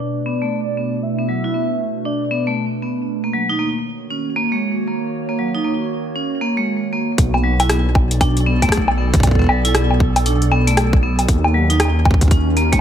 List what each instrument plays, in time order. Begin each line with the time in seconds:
Already playing: ambient pad B2 A3 D4 B4
0.00 vibraphone D4, soft synth lead D5
0.26 vibraphone B3
0.42 vibraphone A3
0.77 vibraphone B3
1.03 soft synth lead E5
1.19 vibraphone B3
1.28 vibraphone F#3
1.44 vibraphone E4
1.54 vibraphone B3
2.05 vibraphone D4, soft synth lead D5
2.31 vibraphone B3
2.47 vibraphone A3
2.82 vibraphone B3
3.08 ambient pad D#3
3.24 vibraphone A#3, ambient pad A#3
3.31 vibraphone F#3, ambient pad F#4
3.47 vibraphone D#4, ambient pad C#5
3.59 vibraphone A#3
4.10 vibraphone C#4
4.36 vibraphone A#3
4.52 vibraphone G#3
4.87 vibraphone A#3
5.29 vibraphone A#3
5.39 vibraphone F#3
5.55 vibraphone D#4
5.64 vibraphone A#3
6.16 vibraphone C#4
6.41 vibraphone A#3
6.57 vibraphone G#3
6.93 vibraphone A#3
7.18 detuned saw bass B1, ambient pad B2, kick, closed hi-hat
7.34 vibraphone B3, ambient pad B3, high bongo
7.41 vibraphone F#3, ambient pad D5
7.60 vibraphone E4, closed hi-hat, high bongo
7.69 vibraphone B3, cross-stick, closed hi-hat
7.82 ambient pad A4
7.95 kick, high bongo
8.11 closed hi-hat
8.21 vibraphone D4, kick, closed hi-hat, high bongo
8.37 closed hi-hat
8.46 vibraphone B3
8.62 vibraphone A3, kick, closed hi-hat, high bongo
8.69 kick, cross-stick, closed hi-hat
8.77 kick
8.88 high bongo
8.98 vibraphone B3
9.14 kick, closed hi-hat
9.20 kick, closed hi-hat, high bongo
9.23 kick
9.27 kick
9.31 kick
9.35 vibraphone B3, kick
9.39 kick
9.42 kick
9.44 kick
9.47 vibraphone F#3, kick, high bongo
9.65 vibraphone E4, closed hi-hat
9.75 vibraphone B3, cross-stick, closed hi-hat
9.90 high bongo
10.00 kick
10.16 closed hi-hat, high bongo
10.26 vibraphone D4, closed hi-hat
10.42 closed hi-hat
10.52 vibraphone B3, high bongo
10.67 vibraphone A3, closed hi-hat
10.77 cross-stick, closed hi-hat, high bongo
10.93 kick
11.03 vibraphone B3
11.19 closed hi-hat, high bongo
11.28 detuned saw bass D#2, ambient pad D#3, kick, closed hi-hat
11.36 ambient pad C#4
11.44 vibraphone A#3, high bongo
11.54 vibraphone F#3
11.70 vibraphone D#4, closed hi-hat
11.80 vibraphone A#3, cross-stick, closed hi-hat, high bongo
11.85 high bongo
11.88 high bongo
11.99 ambient pad F#4
12.05 kick, high bongo
12.11 kick
12.14 kick
12.21 kick, closed hi-hat
12.28 vibraphone C#4, kick, closed hi-hat
12.31 kick
12.57 vibraphone A#3, closed hi-hat
12.68 ambient pad D#5
12.73 vibraphone G#3, kick, closed hi-hat, high bongo